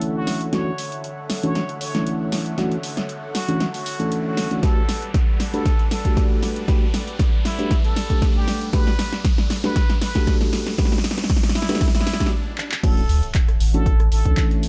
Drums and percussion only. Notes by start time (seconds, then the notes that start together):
0.01 closed hi-hat
0.27 snare, open hi-hat
0.41 closed hi-hat
0.53 snare, closed hi-hat
0.78 open hi-hat
0.92 closed hi-hat
1.04 closed hi-hat
1.30 snare, open hi-hat
1.43 closed hi-hat
1.55 snare, closed hi-hat
1.69 closed hi-hat
1.81 open hi-hat
1.95 snare, closed hi-hat
2.07 closed hi-hat
2.32 snare, open hi-hat
2.46 closed hi-hat
2.58 snare, closed hi-hat
2.72 closed hi-hat
2.83 open hi-hat
2.97 snare, closed hi-hat
3.09 closed hi-hat
3.35 snare, open hi-hat
3.49 closed hi-hat
3.60 snare, closed hi-hat
3.74 open hi-hat
3.86 open hi-hat
4.00 closed hi-hat
4.12 closed hi-hat
4.37 snare, open hi-hat
4.51 closed hi-hat
4.63 kick, snare, closed hi-hat
4.89 snare, open hi-hat
5.02 closed hi-hat
5.14 kick, snare, closed hi-hat
5.40 snare, open hi-hat
5.54 closed hi-hat
5.66 kick, snare, closed hi-hat
5.79 closed hi-hat
5.91 snare, open hi-hat
6.05 kick, closed hi-hat
6.17 kick, snare, closed hi-hat
6.43 snare, open hi-hat
6.56 closed hi-hat
6.68 kick, snare, closed hi-hat
6.94 snare, open hi-hat
7.08 closed hi-hat
7.19 kick, snare, closed hi-hat
7.45 snare, open hi-hat
7.59 closed hi-hat
7.71 kick, snare, closed hi-hat
7.84 closed hi-hat
7.96 snare, open hi-hat
8.10 kick, closed hi-hat
8.22 kick, snare, closed hi-hat
8.48 snare, open hi-hat
8.61 closed hi-hat
8.73 kick, snare, closed hi-hat
8.87 snare
8.99 snare, open hi-hat
9.13 snare, closed hi-hat
9.25 kick, snare, closed hi-hat
9.38 snare
9.50 snare, open hi-hat
9.64 snare, closed hi-hat
9.76 kick, snare, closed hi-hat
9.90 snare, closed hi-hat
10.01 snare, open hi-hat
10.15 kick, snare, closed hi-hat
10.27 kick, snare, closed hi-hat
10.41 snare
10.53 snare, open hi-hat
10.67 snare, closed hi-hat
10.78 kick, snare, closed hi-hat
10.85 snare
10.92 snare, closed hi-hat
10.98 snare
11.04 snare, open hi-hat
11.11 snare
11.18 snare, closed hi-hat
11.24 snare
11.30 kick, snare, closed hi-hat
11.37 snare
11.43 snare, closed hi-hat
11.49 snare
11.55 snare, open hi-hat
11.62 snare
11.69 snare, closed hi-hat
11.75 snare
11.81 kick, snare, closed hi-hat
11.88 snare
11.95 snare, closed hi-hat
12.01 snare
12.07 snare, open hi-hat
12.13 snare
12.20 kick, snare, closed hi-hat
12.26 snare
12.58 clap
12.72 clap
12.83 kick, closed hi-hat, crash
12.97 closed hi-hat
13.09 open hi-hat
13.23 closed hi-hat
13.35 kick, clap, closed hi-hat
13.49 cross-stick, closed hi-hat
13.60 open hi-hat
13.74 closed hi-hat
13.86 kick, closed hi-hat
14.00 cross-stick, closed hi-hat
14.12 open hi-hat
14.25 kick, closed hi-hat
14.37 kick, clap, closed hi-hat
14.51 closed hi-hat
14.63 open hi-hat